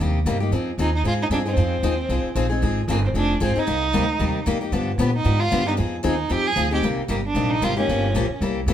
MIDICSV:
0, 0, Header, 1, 5, 480
1, 0, Start_track
1, 0, Key_signature, -3, "minor"
1, 0, Tempo, 262812
1, 952, Time_signature, 4, 2, 24, 8
1, 15954, End_track
2, 0, Start_track
2, 0, Title_t, "Violin"
2, 0, Program_c, 0, 40
2, 1474, Note_on_c, 0, 63, 85
2, 1704, Note_off_c, 0, 63, 0
2, 1725, Note_on_c, 0, 63, 81
2, 1910, Note_off_c, 0, 63, 0
2, 1954, Note_on_c, 0, 65, 100
2, 2065, Note_off_c, 0, 65, 0
2, 2237, Note_on_c, 0, 63, 85
2, 2320, Note_off_c, 0, 63, 0
2, 2419, Note_on_c, 0, 62, 89
2, 2534, Note_off_c, 0, 62, 0
2, 2698, Note_on_c, 0, 60, 89
2, 4526, Note_off_c, 0, 60, 0
2, 5306, Note_on_c, 0, 58, 80
2, 5419, Note_off_c, 0, 58, 0
2, 5575, Note_on_c, 0, 60, 75
2, 5663, Note_off_c, 0, 60, 0
2, 5780, Note_on_c, 0, 62, 95
2, 6214, Note_off_c, 0, 62, 0
2, 6272, Note_on_c, 0, 60, 90
2, 6551, Note_on_c, 0, 63, 98
2, 6578, Note_off_c, 0, 60, 0
2, 8178, Note_off_c, 0, 63, 0
2, 9157, Note_on_c, 0, 59, 70
2, 9387, Note_off_c, 0, 59, 0
2, 9401, Note_on_c, 0, 63, 90
2, 9861, Note_on_c, 0, 65, 103
2, 9888, Note_off_c, 0, 63, 0
2, 10341, Note_off_c, 0, 65, 0
2, 10366, Note_on_c, 0, 63, 79
2, 10456, Note_off_c, 0, 63, 0
2, 11062, Note_on_c, 0, 63, 83
2, 11534, Note_on_c, 0, 67, 106
2, 11561, Note_off_c, 0, 63, 0
2, 11816, Note_on_c, 0, 68, 111
2, 11844, Note_off_c, 0, 67, 0
2, 12279, Note_off_c, 0, 68, 0
2, 12299, Note_on_c, 0, 67, 76
2, 12479, Note_off_c, 0, 67, 0
2, 12965, Note_on_c, 0, 58, 78
2, 13084, Note_off_c, 0, 58, 0
2, 13258, Note_on_c, 0, 62, 89
2, 13703, Note_on_c, 0, 63, 98
2, 13730, Note_off_c, 0, 62, 0
2, 13946, Note_on_c, 0, 65, 102
2, 13974, Note_off_c, 0, 63, 0
2, 14199, Note_off_c, 0, 65, 0
2, 14221, Note_on_c, 0, 61, 90
2, 15301, Note_off_c, 0, 61, 0
2, 15954, End_track
3, 0, Start_track
3, 0, Title_t, "Steel-string acoustic guitar"
3, 0, Program_c, 1, 25
3, 0, Note_on_c, 1, 48, 58
3, 9, Note_on_c, 1, 55, 58
3, 18, Note_on_c, 1, 58, 69
3, 21, Note_on_c, 1, 63, 62
3, 24, Note_on_c, 1, 67, 67
3, 324, Note_off_c, 1, 48, 0
3, 329, Note_off_c, 1, 55, 0
3, 334, Note_off_c, 1, 58, 0
3, 335, Note_off_c, 1, 63, 0
3, 337, Note_off_c, 1, 67, 0
3, 476, Note_on_c, 1, 48, 75
3, 478, Note_on_c, 1, 55, 77
3, 488, Note_on_c, 1, 58, 91
3, 493, Note_on_c, 1, 63, 85
3, 496, Note_on_c, 1, 67, 81
3, 657, Note_off_c, 1, 48, 0
3, 658, Note_off_c, 1, 55, 0
3, 663, Note_off_c, 1, 58, 0
3, 665, Note_off_c, 1, 63, 0
3, 667, Note_off_c, 1, 67, 0
3, 737, Note_on_c, 1, 67, 49
3, 759, Note_on_c, 1, 63, 42
3, 780, Note_on_c, 1, 58, 40
3, 942, Note_off_c, 1, 67, 0
3, 943, Note_off_c, 1, 63, 0
3, 951, Note_on_c, 1, 53, 66
3, 954, Note_off_c, 1, 58, 0
3, 961, Note_on_c, 1, 60, 61
3, 965, Note_on_c, 1, 63, 67
3, 972, Note_on_c, 1, 68, 71
3, 1280, Note_off_c, 1, 53, 0
3, 1285, Note_off_c, 1, 60, 0
3, 1287, Note_off_c, 1, 63, 0
3, 1291, Note_off_c, 1, 68, 0
3, 1435, Note_on_c, 1, 53, 80
3, 1444, Note_on_c, 1, 60, 83
3, 1447, Note_on_c, 1, 63, 88
3, 1460, Note_on_c, 1, 68, 95
3, 1616, Note_off_c, 1, 53, 0
3, 1621, Note_off_c, 1, 60, 0
3, 1622, Note_off_c, 1, 63, 0
3, 1628, Note_off_c, 1, 68, 0
3, 1910, Note_on_c, 1, 53, 58
3, 1921, Note_on_c, 1, 60, 65
3, 1923, Note_on_c, 1, 63, 65
3, 1935, Note_on_c, 1, 68, 67
3, 2240, Note_off_c, 1, 53, 0
3, 2245, Note_off_c, 1, 60, 0
3, 2246, Note_off_c, 1, 63, 0
3, 2252, Note_off_c, 1, 68, 0
3, 2388, Note_on_c, 1, 53, 75
3, 2389, Note_on_c, 1, 60, 76
3, 2402, Note_on_c, 1, 63, 78
3, 2410, Note_on_c, 1, 68, 82
3, 2572, Note_off_c, 1, 53, 0
3, 2573, Note_off_c, 1, 60, 0
3, 2580, Note_off_c, 1, 63, 0
3, 2583, Note_off_c, 1, 68, 0
3, 2657, Note_on_c, 1, 68, 54
3, 2671, Note_on_c, 1, 63, 45
3, 2686, Note_on_c, 1, 60, 44
3, 2852, Note_off_c, 1, 60, 0
3, 2854, Note_off_c, 1, 63, 0
3, 2857, Note_off_c, 1, 68, 0
3, 2863, Note_on_c, 1, 53, 62
3, 2874, Note_on_c, 1, 60, 67
3, 2876, Note_on_c, 1, 63, 72
3, 2879, Note_on_c, 1, 68, 69
3, 3196, Note_off_c, 1, 53, 0
3, 3202, Note_off_c, 1, 60, 0
3, 3203, Note_off_c, 1, 63, 0
3, 3204, Note_off_c, 1, 68, 0
3, 3347, Note_on_c, 1, 53, 78
3, 3357, Note_on_c, 1, 63, 84
3, 3358, Note_on_c, 1, 60, 93
3, 3366, Note_on_c, 1, 68, 84
3, 3532, Note_off_c, 1, 53, 0
3, 3537, Note_off_c, 1, 60, 0
3, 3537, Note_off_c, 1, 63, 0
3, 3541, Note_off_c, 1, 68, 0
3, 3827, Note_on_c, 1, 53, 69
3, 3834, Note_on_c, 1, 60, 62
3, 3839, Note_on_c, 1, 63, 70
3, 3847, Note_on_c, 1, 68, 70
3, 4158, Note_off_c, 1, 53, 0
3, 4162, Note_off_c, 1, 60, 0
3, 4164, Note_off_c, 1, 63, 0
3, 4169, Note_off_c, 1, 68, 0
3, 4302, Note_on_c, 1, 53, 83
3, 4313, Note_on_c, 1, 60, 85
3, 4316, Note_on_c, 1, 63, 86
3, 4320, Note_on_c, 1, 68, 94
3, 4490, Note_off_c, 1, 53, 0
3, 4495, Note_off_c, 1, 60, 0
3, 4497, Note_off_c, 1, 63, 0
3, 4499, Note_off_c, 1, 68, 0
3, 4559, Note_on_c, 1, 68, 59
3, 4584, Note_on_c, 1, 63, 49
3, 4602, Note_on_c, 1, 60, 42
3, 4772, Note_off_c, 1, 68, 0
3, 4774, Note_off_c, 1, 60, 0
3, 4777, Note_off_c, 1, 63, 0
3, 4784, Note_on_c, 1, 53, 60
3, 4796, Note_on_c, 1, 60, 69
3, 4799, Note_on_c, 1, 63, 64
3, 4813, Note_on_c, 1, 68, 68
3, 5117, Note_off_c, 1, 53, 0
3, 5123, Note_off_c, 1, 60, 0
3, 5125, Note_off_c, 1, 63, 0
3, 5131, Note_off_c, 1, 68, 0
3, 5268, Note_on_c, 1, 53, 80
3, 5280, Note_on_c, 1, 60, 81
3, 5293, Note_on_c, 1, 63, 90
3, 5298, Note_on_c, 1, 68, 97
3, 5453, Note_off_c, 1, 53, 0
3, 5459, Note_off_c, 1, 60, 0
3, 5465, Note_off_c, 1, 63, 0
3, 5468, Note_off_c, 1, 68, 0
3, 5751, Note_on_c, 1, 53, 61
3, 5757, Note_on_c, 1, 60, 67
3, 5760, Note_on_c, 1, 63, 68
3, 5773, Note_on_c, 1, 68, 63
3, 6081, Note_off_c, 1, 53, 0
3, 6084, Note_off_c, 1, 60, 0
3, 6085, Note_off_c, 1, 63, 0
3, 6091, Note_off_c, 1, 68, 0
3, 6215, Note_on_c, 1, 53, 83
3, 6227, Note_on_c, 1, 60, 78
3, 6236, Note_on_c, 1, 63, 87
3, 6240, Note_on_c, 1, 68, 98
3, 6407, Note_off_c, 1, 53, 0
3, 6413, Note_off_c, 1, 60, 0
3, 6417, Note_off_c, 1, 63, 0
3, 6419, Note_off_c, 1, 68, 0
3, 6494, Note_on_c, 1, 68, 54
3, 6505, Note_on_c, 1, 63, 52
3, 6526, Note_on_c, 1, 60, 46
3, 6693, Note_off_c, 1, 63, 0
3, 6700, Note_on_c, 1, 48, 70
3, 6701, Note_off_c, 1, 68, 0
3, 6706, Note_off_c, 1, 60, 0
3, 6707, Note_on_c, 1, 55, 67
3, 6713, Note_on_c, 1, 58, 70
3, 6715, Note_on_c, 1, 63, 69
3, 6723, Note_on_c, 1, 67, 64
3, 7035, Note_off_c, 1, 48, 0
3, 7039, Note_off_c, 1, 55, 0
3, 7042, Note_off_c, 1, 58, 0
3, 7043, Note_off_c, 1, 63, 0
3, 7047, Note_off_c, 1, 67, 0
3, 7180, Note_on_c, 1, 48, 83
3, 7195, Note_on_c, 1, 55, 81
3, 7197, Note_on_c, 1, 58, 83
3, 7202, Note_on_c, 1, 63, 88
3, 7207, Note_on_c, 1, 67, 87
3, 7369, Note_off_c, 1, 48, 0
3, 7377, Note_off_c, 1, 55, 0
3, 7378, Note_off_c, 1, 58, 0
3, 7380, Note_off_c, 1, 63, 0
3, 7383, Note_off_c, 1, 67, 0
3, 7658, Note_on_c, 1, 48, 59
3, 7670, Note_on_c, 1, 55, 65
3, 7675, Note_on_c, 1, 58, 60
3, 7678, Note_on_c, 1, 63, 65
3, 7679, Note_on_c, 1, 67, 67
3, 7995, Note_off_c, 1, 48, 0
3, 8001, Note_off_c, 1, 55, 0
3, 8003, Note_off_c, 1, 58, 0
3, 8005, Note_off_c, 1, 63, 0
3, 8005, Note_off_c, 1, 67, 0
3, 8145, Note_on_c, 1, 48, 73
3, 8153, Note_on_c, 1, 55, 76
3, 8164, Note_on_c, 1, 58, 91
3, 8168, Note_on_c, 1, 63, 82
3, 8173, Note_on_c, 1, 67, 87
3, 8332, Note_off_c, 1, 48, 0
3, 8336, Note_off_c, 1, 55, 0
3, 8342, Note_off_c, 1, 58, 0
3, 8344, Note_off_c, 1, 63, 0
3, 8346, Note_off_c, 1, 67, 0
3, 8418, Note_on_c, 1, 67, 53
3, 8434, Note_on_c, 1, 63, 45
3, 8453, Note_on_c, 1, 58, 42
3, 8623, Note_off_c, 1, 67, 0
3, 8624, Note_on_c, 1, 50, 63
3, 8630, Note_on_c, 1, 53, 69
3, 8631, Note_off_c, 1, 58, 0
3, 8631, Note_off_c, 1, 63, 0
3, 8638, Note_on_c, 1, 59, 71
3, 8642, Note_on_c, 1, 62, 67
3, 8649, Note_on_c, 1, 67, 65
3, 8958, Note_off_c, 1, 50, 0
3, 8961, Note_off_c, 1, 53, 0
3, 8965, Note_off_c, 1, 59, 0
3, 8967, Note_off_c, 1, 62, 0
3, 8970, Note_off_c, 1, 67, 0
3, 9109, Note_on_c, 1, 50, 82
3, 9117, Note_on_c, 1, 53, 84
3, 9123, Note_on_c, 1, 59, 90
3, 9131, Note_on_c, 1, 62, 86
3, 9137, Note_on_c, 1, 67, 97
3, 9294, Note_off_c, 1, 50, 0
3, 9298, Note_off_c, 1, 53, 0
3, 9301, Note_off_c, 1, 59, 0
3, 9305, Note_off_c, 1, 62, 0
3, 9308, Note_off_c, 1, 67, 0
3, 9577, Note_on_c, 1, 50, 61
3, 9585, Note_on_c, 1, 53, 62
3, 9592, Note_on_c, 1, 59, 66
3, 9592, Note_on_c, 1, 62, 63
3, 9597, Note_on_c, 1, 67, 70
3, 9914, Note_off_c, 1, 50, 0
3, 9919, Note_off_c, 1, 53, 0
3, 9922, Note_off_c, 1, 59, 0
3, 9922, Note_off_c, 1, 62, 0
3, 9924, Note_off_c, 1, 67, 0
3, 10063, Note_on_c, 1, 50, 76
3, 10078, Note_on_c, 1, 59, 89
3, 10080, Note_on_c, 1, 53, 78
3, 10087, Note_on_c, 1, 67, 91
3, 10088, Note_on_c, 1, 62, 84
3, 10251, Note_off_c, 1, 50, 0
3, 10259, Note_off_c, 1, 59, 0
3, 10260, Note_off_c, 1, 53, 0
3, 10263, Note_off_c, 1, 67, 0
3, 10264, Note_off_c, 1, 62, 0
3, 10323, Note_on_c, 1, 67, 54
3, 10347, Note_on_c, 1, 62, 50
3, 10361, Note_on_c, 1, 59, 41
3, 10536, Note_off_c, 1, 59, 0
3, 10536, Note_off_c, 1, 67, 0
3, 10537, Note_on_c, 1, 53, 64
3, 10543, Note_on_c, 1, 60, 71
3, 10546, Note_off_c, 1, 62, 0
3, 10553, Note_on_c, 1, 63, 68
3, 10561, Note_on_c, 1, 68, 76
3, 10874, Note_off_c, 1, 53, 0
3, 10877, Note_off_c, 1, 60, 0
3, 10883, Note_off_c, 1, 63, 0
3, 10886, Note_off_c, 1, 68, 0
3, 11012, Note_on_c, 1, 53, 84
3, 11025, Note_on_c, 1, 60, 84
3, 11029, Note_on_c, 1, 63, 88
3, 11035, Note_on_c, 1, 68, 90
3, 11206, Note_off_c, 1, 53, 0
3, 11212, Note_off_c, 1, 60, 0
3, 11214, Note_off_c, 1, 63, 0
3, 11218, Note_off_c, 1, 68, 0
3, 11494, Note_on_c, 1, 53, 61
3, 11503, Note_on_c, 1, 60, 66
3, 11515, Note_on_c, 1, 63, 66
3, 11517, Note_on_c, 1, 68, 66
3, 11833, Note_off_c, 1, 53, 0
3, 11837, Note_off_c, 1, 60, 0
3, 11844, Note_off_c, 1, 63, 0
3, 11845, Note_off_c, 1, 68, 0
3, 11977, Note_on_c, 1, 53, 82
3, 11980, Note_on_c, 1, 60, 77
3, 11995, Note_on_c, 1, 63, 91
3, 12001, Note_on_c, 1, 68, 90
3, 12168, Note_off_c, 1, 53, 0
3, 12170, Note_off_c, 1, 60, 0
3, 12178, Note_off_c, 1, 63, 0
3, 12180, Note_off_c, 1, 68, 0
3, 12256, Note_on_c, 1, 68, 54
3, 12278, Note_on_c, 1, 63, 50
3, 12291, Note_on_c, 1, 60, 47
3, 12462, Note_off_c, 1, 68, 0
3, 12473, Note_off_c, 1, 63, 0
3, 12476, Note_on_c, 1, 48, 69
3, 12480, Note_off_c, 1, 60, 0
3, 12481, Note_on_c, 1, 55, 60
3, 12491, Note_on_c, 1, 58, 66
3, 12493, Note_on_c, 1, 63, 66
3, 12493, Note_on_c, 1, 67, 76
3, 12804, Note_off_c, 1, 48, 0
3, 12807, Note_off_c, 1, 55, 0
3, 12812, Note_off_c, 1, 58, 0
3, 12813, Note_off_c, 1, 63, 0
3, 12813, Note_off_c, 1, 67, 0
3, 12937, Note_on_c, 1, 48, 78
3, 12949, Note_on_c, 1, 55, 86
3, 12951, Note_on_c, 1, 58, 76
3, 12958, Note_on_c, 1, 63, 90
3, 12964, Note_on_c, 1, 67, 85
3, 13128, Note_off_c, 1, 48, 0
3, 13134, Note_off_c, 1, 55, 0
3, 13135, Note_off_c, 1, 58, 0
3, 13139, Note_off_c, 1, 63, 0
3, 13142, Note_off_c, 1, 67, 0
3, 13421, Note_on_c, 1, 48, 66
3, 13434, Note_on_c, 1, 55, 60
3, 13437, Note_on_c, 1, 58, 67
3, 13444, Note_on_c, 1, 63, 69
3, 13445, Note_on_c, 1, 67, 60
3, 13756, Note_off_c, 1, 48, 0
3, 13763, Note_off_c, 1, 55, 0
3, 13764, Note_off_c, 1, 58, 0
3, 13768, Note_off_c, 1, 63, 0
3, 13769, Note_off_c, 1, 67, 0
3, 13916, Note_on_c, 1, 48, 81
3, 13921, Note_on_c, 1, 55, 86
3, 13924, Note_on_c, 1, 58, 88
3, 13928, Note_on_c, 1, 63, 89
3, 13939, Note_on_c, 1, 67, 90
3, 14098, Note_off_c, 1, 48, 0
3, 14101, Note_off_c, 1, 55, 0
3, 14102, Note_off_c, 1, 58, 0
3, 14104, Note_off_c, 1, 63, 0
3, 14109, Note_off_c, 1, 67, 0
3, 14184, Note_on_c, 1, 67, 61
3, 14204, Note_on_c, 1, 63, 47
3, 14219, Note_on_c, 1, 58, 43
3, 14386, Note_off_c, 1, 67, 0
3, 14396, Note_off_c, 1, 63, 0
3, 14404, Note_off_c, 1, 58, 0
3, 14415, Note_on_c, 1, 49, 67
3, 14421, Note_on_c, 1, 53, 65
3, 14423, Note_on_c, 1, 58, 62
3, 14434, Note_on_c, 1, 65, 66
3, 14438, Note_on_c, 1, 67, 75
3, 14734, Note_off_c, 1, 49, 0
3, 14737, Note_off_c, 1, 53, 0
3, 14738, Note_off_c, 1, 58, 0
3, 14743, Note_off_c, 1, 65, 0
3, 14745, Note_off_c, 1, 67, 0
3, 14881, Note_on_c, 1, 49, 80
3, 14889, Note_on_c, 1, 53, 79
3, 14896, Note_on_c, 1, 58, 94
3, 14900, Note_on_c, 1, 65, 85
3, 14906, Note_on_c, 1, 67, 99
3, 15060, Note_off_c, 1, 49, 0
3, 15065, Note_off_c, 1, 53, 0
3, 15068, Note_off_c, 1, 58, 0
3, 15070, Note_off_c, 1, 65, 0
3, 15073, Note_off_c, 1, 67, 0
3, 15372, Note_on_c, 1, 55, 61
3, 15373, Note_on_c, 1, 48, 63
3, 15382, Note_on_c, 1, 58, 66
3, 15389, Note_on_c, 1, 64, 67
3, 15395, Note_on_c, 1, 67, 71
3, 15692, Note_off_c, 1, 55, 0
3, 15693, Note_off_c, 1, 48, 0
3, 15698, Note_off_c, 1, 58, 0
3, 15701, Note_off_c, 1, 64, 0
3, 15704, Note_off_c, 1, 67, 0
3, 15848, Note_on_c, 1, 48, 86
3, 15854, Note_on_c, 1, 55, 81
3, 15858, Note_on_c, 1, 58, 84
3, 15859, Note_on_c, 1, 64, 86
3, 15871, Note_on_c, 1, 67, 81
3, 15954, Note_off_c, 1, 48, 0
3, 15954, Note_off_c, 1, 55, 0
3, 15954, Note_off_c, 1, 58, 0
3, 15954, Note_off_c, 1, 64, 0
3, 15954, Note_off_c, 1, 67, 0
3, 15954, End_track
4, 0, Start_track
4, 0, Title_t, "Upright bass"
4, 0, Program_c, 2, 32
4, 0, Note_on_c, 2, 39, 85
4, 455, Note_off_c, 2, 39, 0
4, 466, Note_on_c, 2, 43, 84
4, 927, Note_off_c, 2, 43, 0
4, 937, Note_on_c, 2, 41, 81
4, 1410, Note_off_c, 2, 41, 0
4, 1420, Note_on_c, 2, 39, 83
4, 1882, Note_off_c, 2, 39, 0
4, 1893, Note_on_c, 2, 44, 82
4, 2361, Note_off_c, 2, 44, 0
4, 2372, Note_on_c, 2, 43, 81
4, 2847, Note_off_c, 2, 43, 0
4, 2858, Note_on_c, 2, 41, 86
4, 3330, Note_off_c, 2, 41, 0
4, 3338, Note_on_c, 2, 39, 91
4, 3805, Note_off_c, 2, 39, 0
4, 3816, Note_on_c, 2, 36, 82
4, 4073, Note_off_c, 2, 36, 0
4, 4299, Note_on_c, 2, 34, 89
4, 4771, Note_off_c, 2, 34, 0
4, 4793, Note_on_c, 2, 32, 88
4, 5245, Note_off_c, 2, 32, 0
4, 5256, Note_on_c, 2, 31, 91
4, 5723, Note_off_c, 2, 31, 0
4, 5734, Note_on_c, 2, 29, 83
4, 6208, Note_off_c, 2, 29, 0
4, 6226, Note_on_c, 2, 32, 77
4, 6479, Note_off_c, 2, 32, 0
4, 6714, Note_on_c, 2, 36, 83
4, 7179, Note_off_c, 2, 36, 0
4, 7195, Note_on_c, 2, 38, 83
4, 7653, Note_off_c, 2, 38, 0
4, 7664, Note_on_c, 2, 39, 86
4, 8134, Note_off_c, 2, 39, 0
4, 8148, Note_on_c, 2, 41, 84
4, 8607, Note_off_c, 2, 41, 0
4, 8618, Note_on_c, 2, 43, 87
4, 9080, Note_off_c, 2, 43, 0
4, 9091, Note_on_c, 2, 46, 90
4, 9568, Note_off_c, 2, 46, 0
4, 9588, Note_on_c, 2, 44, 84
4, 10057, Note_off_c, 2, 44, 0
4, 10078, Note_on_c, 2, 43, 82
4, 10541, Note_off_c, 2, 43, 0
4, 10568, Note_on_c, 2, 41, 79
4, 11021, Note_off_c, 2, 41, 0
4, 11032, Note_on_c, 2, 39, 91
4, 11498, Note_off_c, 2, 39, 0
4, 11509, Note_on_c, 2, 41, 82
4, 11968, Note_off_c, 2, 41, 0
4, 11979, Note_on_c, 2, 38, 80
4, 12445, Note_off_c, 2, 38, 0
4, 12456, Note_on_c, 2, 36, 80
4, 12714, Note_off_c, 2, 36, 0
4, 12940, Note_on_c, 2, 31, 82
4, 13406, Note_off_c, 2, 31, 0
4, 13417, Note_on_c, 2, 34, 89
4, 13891, Note_off_c, 2, 34, 0
4, 13905, Note_on_c, 2, 32, 79
4, 14375, Note_off_c, 2, 32, 0
4, 14384, Note_on_c, 2, 31, 81
4, 14855, Note_off_c, 2, 31, 0
4, 14870, Note_on_c, 2, 34, 82
4, 15122, Note_off_c, 2, 34, 0
4, 15355, Note_on_c, 2, 36, 83
4, 15812, Note_off_c, 2, 36, 0
4, 15823, Note_on_c, 2, 43, 79
4, 15954, Note_off_c, 2, 43, 0
4, 15954, End_track
5, 0, Start_track
5, 0, Title_t, "Muted upright bass strokes"
5, 4084, Note_on_c, 9, 29, 38
5, 4267, Note_off_c, 9, 29, 0
5, 6507, Note_on_c, 9, 29, 37
5, 6689, Note_off_c, 9, 29, 0
5, 12739, Note_on_c, 9, 29, 40
5, 12921, Note_off_c, 9, 29, 0
5, 15137, Note_on_c, 9, 29, 37
5, 15319, Note_off_c, 9, 29, 0
5, 15954, End_track
0, 0, End_of_file